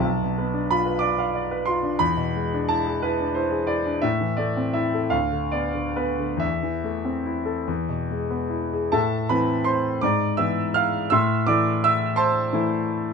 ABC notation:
X:1
M:6/8
L:1/16
Q:3/8=57
K:Am
V:1 name="Grand piano"
a4 b2 d'4 c'2 | b4 a2 B2 c2 d2 | e2 d2 e2 f2 d2 B2 | e8- e2 z2 |
[Aea]2 [Bb]2 [cc']2 [dd']2 [ee']2 [ff']2 | [ec'e']2 [dd']2 [ee']2 [cac']6 |]
V:2 name="Grand piano"
B,,, B,, B, D F B d f d B F D | E,, B,, ^G, D E ^G E D E G E D | A,, E, A, C E A D,, D, B, D, B, D, | E,, E, A, C E A E,, B,, ^G, B, E ^G |
A,,2 [E,CE]4 ^G,,2 [E,B,E]4 | A,,2 [E,A,E]6 [E,A,E]4 |]